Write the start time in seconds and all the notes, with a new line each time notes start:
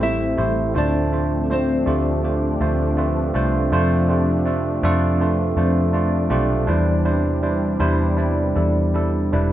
Already playing: A1 G3 A3 C4 E4 B4
0.00 A3 E4 G4 C5 E5
0.37 A1 A3 E4 G4 C5
0.74 D2 A2 F3 A3 D4 F4 C5 D5
1.12 A3 D4 F4 C5
1.50 A3 C4 D4 F4 C5
1.86 D2 A3 D4 F4 G4
2.23 A3 D4 F4 C5
2.61 D2 A3 D4 F4 C5
2.97 A3 D4 F4 B4
3.34 C2 A3 D4 F4 C5
3.72 F2 C3 A3 D4 F4 C5
4.09 A3 D4 F4 G4
4.45 A3 D4 F4 A4
4.83 F2 A3 D4 F4 A4
5.21 A3 D4 F4 B4
5.57 F2 A3 D4 F4 C5
5.93 A3 D4 F4 D5
6.30 B1 A3 D4 F4 G4
6.67 E2 C3 E3 G3 D4 E4 C5
7.05 G3 D4 E4 C5
7.42 G3 D4 E4 C5
7.80 E2 G3 D4 E4 C5
8.17 G3 D4 E4 D5
8.55 E2 G3 D4 E4 A4
8.94 G3 D4 E4 A4
9.32 E1 G3 D4 E4 B4